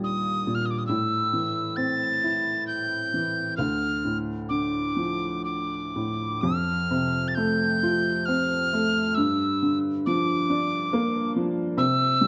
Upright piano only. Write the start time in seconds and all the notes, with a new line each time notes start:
Already playing: D#2 A#2 D3 G3
0.47 A#2
0.89 A2
1.33 E3
1.77 C4
2.24 E4
3.14 E3
3.58 D2
4.05 A2
4.50 D3
4.97 F3
5.96 A2
6.43 F2
6.91 C3
7.37 A3
7.83 F4
8.28 C4
8.73 A3
9.17 G2
9.62 D3
10.07 F3
10.50 D4
10.93 A#3
11.36 F3
11.77 C3
12.21 G3